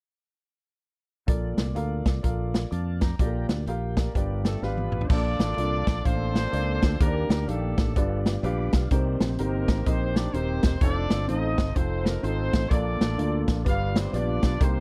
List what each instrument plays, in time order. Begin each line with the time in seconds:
1.27 fingered electric bass A#1, grand piano A#2 F4 A4 A#4 D5, tonewheel organ A#3 F4 D5, kick, closed hi-hat
1.57 fingered electric bass C2, snare, closed hi-hat
1.75 fingered electric bass D2, grand piano F4 A4 A#4 F5, closed hi-hat
2.05 fingered electric bass C2, kick, snare, closed hi-hat
2.23 fingered electric bass A#1, grand piano F4 A4 A#4 F5, kick, closed hi-hat
2.54 snare, closed hi-hat
2.71 fingered electric bass F2, tonewheel organ F5 A5, grand piano D6, closed hi-hat
3.01 tonewheel organ G5 A#5, grand piano A#5, kick, snare, closed hi-hat
3.19 fingered electric bass A#1, grand piano A#2 F4 G4 A4 D5, tonewheel organ A3 F4 G4 D5, kick, closed hi-hat
3.26 tonewheel organ A#3, grand piano A#4
3.49 fingered electric bass D2, snare, closed hi-hat
3.67 fingered electric bass A#1, grand piano F4 G4 A#4 F5, tonewheel organ G5, closed hi-hat
3.97 tonewheel organ A#4 D5, grand piano F5, kick, snare, closed hi-hat
4.15 fingered electric bass G1, grand piano G2 F4 G4 B4 D5 G5, tonewheel organ B3 F4 G4 D5, kick, closed hi-hat
4.44 horn section A3 A4, grand piano G5, snare, closed hi-hat
4.62 fingered electric bass G#1, horn section B3 D4 F4 B4, grand piano F4 G4 B4 F5 B5, snare
4.78 high tom
4.92 fingered electric bass A1, mid tom
5.01 floor tom
5.09 fingered electric bass A#1, grand piano A#2 A#3 D4 F4 A4 D5, tonewheel organ A#3 D4 F4 A4 C5, horn section D4 F4 A4 D5, kick, crash
5.15 tonewheel organ D5
5.39 fingered electric bass A1, snare, closed hi-hat
5.57 fingered electric bass C2, grand piano A#3 D4 F4 A4 D5, closed hi-hat
5.87 fingered electric bass A#1, kick, snare, closed hi-hat
6.04 fingered electric bass A1, grand piano A#3 D4 F4 A4 F5, horn section C4 F4 A4 C5, kick, closed hi-hat
6.35 snare, closed hi-hat
6.52 fingered electric bass C#2, grand piano A#3 D4 F4 A4 D5, closed hi-hat
6.82 fingered electric bass D2, kick, snare, closed hi-hat
6.99 fingered electric bass D#2, grand piano D#3 A#3 D4 G4 A#4 C5, tonewheel organ D#3 A#3 D4 G4 D5, horn section A#3 D4 G4 A#4, kick, closed hi-hat
7.06 grand piano D5
7.29 fingered electric bass D2, snare, closed hi-hat
7.48 fingered electric bass A#1, grand piano D#3 A#3 D4 G4 F5, horn section A3 D4 A4, closed hi-hat
7.78 fingered electric bass A1, kick, snare, closed hi-hat
7.96 fingered electric bass G1, grand piano G2 D4 F4 G4 B4 D5, tonewheel organ B3 D4 F4 G4 D5, kick, closed hi-hat
8.26 snare, closed hi-hat
8.43 fingered electric bass A#1, grand piano D4 F4 G4 B4 F5, tonewheel organ D5 B5 D6, closed hi-hat
8.72 fingered electric bass B1, tonewheel organ D5 F5, kick, snare, closed hi-hat
8.91 fingered electric bass C2, grand piano C3 C4 D#4 G4 A#4 C5, tonewheel organ A#3 C4 D#4 G4 C5, kick, closed hi-hat
9.20 fingered electric bass A#1, snare, closed hi-hat
9.38 fingered electric bass G1, horn section A#3 D#4 G4 A#4, grand piano C4 D#4 G4 A#4 C5, closed hi-hat
9.68 fingered electric bass A1, kick, snare, closed hi-hat
9.86 fingered electric bass A#1, grand piano C4 D#4 G4 A#4 D#5, horn section C4 D#4 G4 C5, kick, closed hi-hat
10.16 horn section D4 D5, snare, closed hi-hat
10.33 fingered electric bass D#1, grand piano C4 D#4 G4 A#4 C5, horn section C4 D#4 G4 C5, closed hi-hat
10.63 fingered electric bass E1, kick, snare, closed hi-hat
10.81 fingered electric bass F1, tonewheel organ A3 C4 D#4 F4 C5, grand piano C4 D#4 F4 A4 C5, horn section D4 A4 D5, kick, closed hi-hat
11.10 fingered electric bass G1, snare, closed hi-hat
11.27 fingered electric bass A1, grand piano C4 D#4 F4 A4 C5, horn section D#4 A4 C5 D#5, closed hi-hat
11.58 fingered electric bass G1, kick, snare, closed hi-hat
11.75 fingered electric bass F1, grand piano C4 D#4 F4 A4 C5, horn section C4 D#4 A4 C5, kick, closed hi-hat
12.05 horn section A#3 A#4, snare, closed hi-hat
12.22 fingered electric bass G#1, grand piano C4 D#4 F4 A4 C5, horn section C4 D#4 A4 C5, closed hi-hat
12.53 fingered electric bass A1, kick, snare, closed hi-hat
12.70 fingered electric bass A#1, grand piano A#2 A#3 D4 F4 A4 D5, tonewheel organ A#3 D4 F4 A4 C#5, horn section D4 F4 A4 D5, kick, closed hi-hat
12.76 tonewheel organ D5
13.01 fingered electric bass A1, snare, closed hi-hat
13.18 fingered electric bass D2, grand piano A#3 D4 F4 A4 D5, closed hi-hat
13.48 fingered electric bass A#1, kick, snare, closed hi-hat
13.64 fingered electric bass G1, grand piano G2 B3 D4 F4 G4 B4, tonewheel organ B3 D4 F4 G4 D5, horn section F4 B4 D5 F5, kick, closed hi-hat
13.96 horn section C4 C5, snare, closed hi-hat
14.13 fingered electric bass A#1, grand piano B3 D4 F4 G4 D5, horn section D4 F4 B4 D5, closed hi-hat
14.42 fingered electric bass B1, kick, snare, closed hi-hat
14.60 fingered electric bass C2, grand piano C3 A#3 C4 D#4 G4 A#4, tonewheel organ A#3 C4 D#4 G4 C5, horn section C4 D#4 G4 C5, kick, closed hi-hat